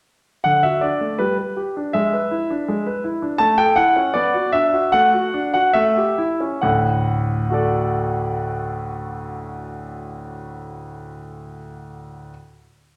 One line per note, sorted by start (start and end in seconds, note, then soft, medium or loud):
0.44 0.63 D3 soft
0.44 0.63 F#5 medium
0.63 0.83 F#4 soft
0.63 0.82 E5 medium
0.81 1.02 D4 soft
0.81 1.19 D5 medium
1.01 1.19 A3 soft
1.19 1.37 G3 soft
1.19 1.37 B4 medium
1.38 1.58 B4 soft
1.57 1.77 G4 soft
1.77 1.95 D4 soft
1.93 2.13 G#3 medium
1.93 3.03 E5 medium
2.13 2.32 B4 soft
2.31 2.50 E4 soft
2.50 2.69 D4 soft
2.68 2.85 G#3 soft
2.86 3.05 B4 soft
3.04 3.23 E4 soft
3.22 3.40 D4 soft
3.38 3.58 A3 medium
3.38 3.58 A5 loud
3.58 3.78 A4 medium
3.58 3.77 G5 medium
3.76 3.97 E4 soft
3.76 4.15 F#5 medium
3.96 4.15 C#4 soft
4.14 4.34 B3 medium
4.14 4.53 D5 medium
4.34 4.55 F#4 soft
4.52 4.74 D4 soft
4.52 4.89 E5 medium
4.73 4.93 F#4 soft
4.92 5.13 A3 medium
4.92 5.50 F#5 loud
5.14 5.35 F#4 medium
5.34 5.55 D4 soft
5.54 5.75 F#4 soft
5.54 5.75 F#5 medium
5.73 5.96 A3 medium
5.73 6.26 E5 medium
5.97 6.20 G4 soft
6.18 6.42 E4 soft
6.40 6.62 C#4 soft
6.61 11.08 D2 medium
6.61 11.08 A2 medium
6.61 11.07 F#5 medium
7.50 11.58 F#4 soft
7.50 11.59 A4 soft
7.54 11.60 D5 soft